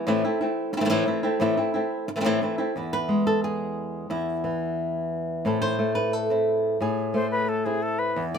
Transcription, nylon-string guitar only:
0.07 A2 E3 A3 C4 E4
0.24 A3 C4 E4
0.41 A3 C4 E4
0.73 muted nylon-string guitar stroke
0.77 E3 C4 E4
0.81 E3 A3 C4 E4
0.85 A3 C4 E4
0.90 A2 E3 A3 C4 E4
1.06 E3 A3 C4 E4
1.23 A3 C4 E4
1.40 A2 E3 A3 C4 E4
1.57 A3 C4 E4
1.74 A3 C4 E4
2.08 muted nylon-string guitar stroke
2.16 E3 A3 C4 E4
2.21 A2 E3 A3 C4 E4
2.26 E3 A3 C4 E4
2.42 E3 A3 C4 E4
2.58 A3 C4 E4
2.76 E2 B3 E4
2.93 B4
3.09 G#3
3.27 A4
3.44 G#4
4.10 E2 E4
4.44 E3
5.45 A2 C4 E4 A4
5.62 C5
5.79 A3
5.95 B4
6.13 A4
6.30 C4 E4
6.81 A2 G#4
7.14 A3
7.66 C4 E4
8.16 E2
8.34 D5

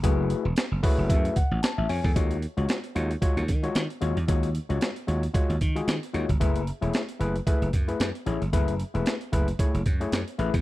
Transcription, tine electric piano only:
0.03 A3 E4 F#4 G#4 B4
0.83 A3 E4 F#4 G#4 B4 C#5
1.10 E5
1.36 F#5
1.63 A5
1.78 E5
1.89 C#5 G#5
2.04 A4
2.16 G#3 F4 F#4 C#5
2.57 G#3 F4 F#4 C#5
2.95 G#3 F4 F#4 C#5
3.22 G#3 F4 F#4 C#5
3.63 G#3 F4 F#4 C#5
4.01 G#3 F4 F#4 C#5
4.28 G#3 F4 F#4 C#5
4.69 G#3 F4 F#4 C#5
5.07 G#3 F4 F#4 C#5
5.34 G#3 F4 F#4 C#5
5.75 G#3 F4 F#4 G#4
6.13 G#3 F4 F#4 C#5
6.40 A3 E4 G#4 B4
6.81 A3 E4 G#4 C#5
7.20 A3 E4 G#4 B4
7.47 A3 E4 G#4 B4
7.88 A3 E4 G#4 B4
8.26 A3 E4 G#4 C#5
8.53 A3 E4 G#4 B4
8.94 A3 E4 G#4 B4
9.32 A3 E4 G#4 B4
9.59 A3 E4 G#4 C#5
10.00 A3 E4 G#4 C#5
10.39 A3 E4 G#4 B4

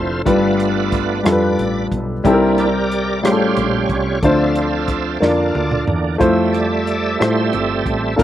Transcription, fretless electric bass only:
Already playing: F1
0.26 G1
1.25 F2
1.59 A1
1.92 B1
2.25 C2
3.25 A1
3.57 A#1
3.90 C2
4.23 D2
5.22 F2
5.56 D2
5.88 E2
6.21 F2
7.21 A2
7.54 G1
7.86 A1
8.19 A#1

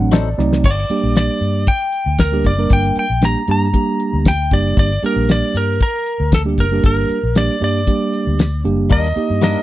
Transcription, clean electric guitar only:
0.12 F#3 C4 D#4 A4
8.90 G3 A#3 D4 A#4
9.42 G3 A#3 D4 A#4

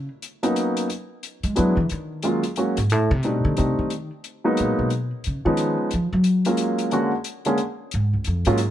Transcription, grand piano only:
0.43 F#3 A#3 B3 C#4 D#4
1.56 F#3 G#3 B3 D4 E4
2.23 F#3 G#3 A#3 C#4 F4
2.57 F#3 G#3 A#3 C#4 F#4
3.24 G3 A3 C4 D4 D#4
3.57 G3 A3 C4 D4 D#4
4.44 F#3 G#3 A#3 B3 D#4
5.45 F3 G#3 B3 C#4 D#4
6.46 F#3 G#3 A#3 C#4 F4
6.92 D3 G#3 A#3 C#4 F#4
7.46 D3 G#3 A#3 C#4 G#4
8.47 F#3 G#3 A#3 C#4 F4

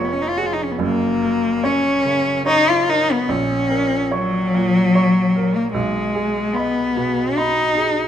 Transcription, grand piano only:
Already playing: F1 F2 F3 G#4 C#5 C#6
0.37 G#4
0.78 F#1 F#2
1.22 A#4
1.64 C#5 C#6
2.05 C#3
2.46 C#5 C#6
2.87 A#4
3.29 A#1
3.69 A#4
4.12 C#5 C#6
4.54 A#2
4.95 C#5 C#6
5.36 A#4
5.74 B1
6.15 G#4
6.55 D#5 B5
6.97 B2
7.37 D#5 B5
7.77 G#4

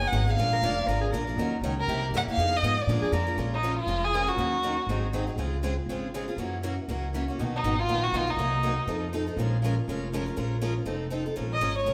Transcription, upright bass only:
Already playing: F#1
0.12 G#1
0.37 A#1
0.62 F1
0.87 G#1
1.13 A#1
1.36 D#2
1.61 C#2
1.88 C2
2.11 G2
2.27 muted upright bass stroke
2.37 F2
2.62 G#2
2.87 A#2
3.02 muted upright bass stroke
3.12 F2
3.37 A#1
3.87 F1
4.37 D#2
4.87 G#1
5.36 C#2
5.86 G#1
6.37 F#2
6.88 C#2
7.39 B1
7.63 G#1
7.88 A#1
8.12 B1
8.37 C2
8.87 F2
9.36 A#1
9.88 F1
10.37 A#1
10.86 F1
11.37 A#1
11.61 G#1
11.86 C2

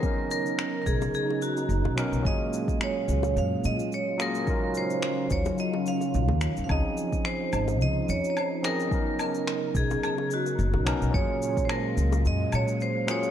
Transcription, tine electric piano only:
0.00 F#3 B3 C#4
0.05 D#4 A#4
1.96 F#3 B3 C#4 D#4 A#4
2.22 F#3 A#3 C#4
2.27 F4 G#4
4.18 F#3 A#3 C#4 F4 G#4
4.44 F#3 C#4 D#4
4.49 F4 A#4
6.66 F3 C4 C#4
6.70 D#4 G#4
8.62 F3 C4 C#4 D#4 G#4
8.89 F#3 B3 C#4
8.94 D#4 A#4
10.85 F#3 B3 C#4 D#4 A#4
11.11 F#3 A#3 C#4
11.16 F4 G#4
13.07 F#3 A#3 C#4 F4 G#4

